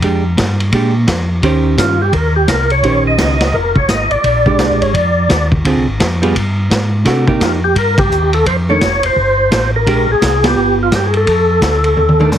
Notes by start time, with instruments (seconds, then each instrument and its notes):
0.02 tonewheel organ F2, hollow-body jazz guitar G#3 D4 G4, kick, ride
0.37 tonewheel organ G2, kick, snare, hi-hat pedal, ride
0.60 ride
0.72 tonewheel organ A#2, hollow-body jazz guitar G#3 D4 G4, kick, ride
1.07 tonewheel organ F2, kick, snare, hi-hat pedal, ride
1.42 tonewheel organ D#2, hollow-body jazz guitar D#3 C#4 G4 C5, kick, ride
1.77 tonewheel organ G2 F4, kick, snare, hi-hat pedal, ride
2.02 tonewheel organ G4
2.12 tonewheel organ D#2 A#4, kick, ride
2.36 tonewheel organ G4
2.48 tonewheel organ C2 A#4, kick, snare, hi-hat pedal, ride
2.70 tonewheel organ C#5, ride
2.83 tonewheel organ A#1, hollow-body jazz guitar D#3 C#4 G4 C5, kick, ride
3.07 tonewheel organ D#5
3.18 tonewheel organ C#2, kick, snare, hi-hat pedal, ride
3.40 snare, ride
3.53 tonewheel organ F1 A#4, kick
3.76 tonewheel organ C#5, kick
3.88 tonewheel organ G#1 D#5, kick, snare, hi-hat pedal, ride
4.10 tonewheel organ G#1 D5, ride
4.23 tonewheel organ A#1, kick, ride
4.46 hollow-body jazz guitar G#3 D4 G4, kick
4.58 tonewheel organ C2, kick, snare, hi-hat pedal, ride
4.70 tonewheel organ A#1
4.81 tonewheel organ G#1 C#5, ride
4.94 tonewheel organ F2 D5, kick, ride
5.29 tonewheel organ D#2, kick, snare, hi-hat pedal, ride
5.52 kick
5.64 tonewheel organ D2, hollow-body jazz guitar D3 C4 F4 G#4, kick, ride
5.75 tonewheel organ C2
5.87 tonewheel organ G#1
5.99 tonewheel organ F2, kick, snare, hi-hat pedal, ride
6.22 hollow-body jazz guitar G3 B3 F4 G#4, ride
6.35 tonewheel organ G2, kick, ride
6.70 tonewheel organ G#2, kick, snare, hi-hat pedal, ride
7.05 tonewheel organ C3, hollow-body jazz guitar A3 D4 F#4, kick, snare, ride
7.27 hollow-body jazz guitar A#3 D#4 G4, kick
7.40 tonewheel organ F2 F4, kick, snare, hi-hat pedal, ride
7.64 tonewheel organ G4
7.75 tonewheel organ G2 A#4, kick, ride
7.98 tonewheel organ G4, kick, ride
8.09 tonewheel organ D#2, hi-hat pedal
8.33 tonewheel organ A4, ride
8.46 tonewheel organ F2 C5, kick, ride
8.69 hollow-body jazz guitar D#3 A3 D4, tonewheel organ C#5
8.81 tonewheel organ F1, kick, snare, hi-hat pedal, ride
9.03 tonewheel organ F1 C5, ride
9.16 tonewheel organ G1, kick
9.51 tonewheel organ A1, kick, snare, hi-hat pedal, ride
9.76 tonewheel organ A#4
9.87 tonewheel organ A#1, hollow-body jazz guitar G#3 D4 G4, kick, ride
10.08 tonewheel organ A#1 G#4
10.21 tonewheel organ C2, kick, snare, hi-hat pedal, ride
10.44 hollow-body jazz guitar B3 F4, tonewheel organ G4, snare, ride
10.57 tonewheel organ G1
10.83 tonewheel organ F4
10.92 tonewheel organ G2 G4, kick, snare, hi-hat pedal, ride
11.07 tonewheel organ G#4
11.14 tonewheel organ A4, ride
11.26 tonewheel organ F2, kick, ride
11.61 tonewheel organ D2, kick, snare, hi-hat pedal, ride
11.84 ride
11.97 tonewheel organ D#2, high tom
12.09 high tom
12.20 hollow-body jazz guitar D#3 A3 D4, high tom
12.32 tonewheel organ F2, hi-hat pedal, mid tom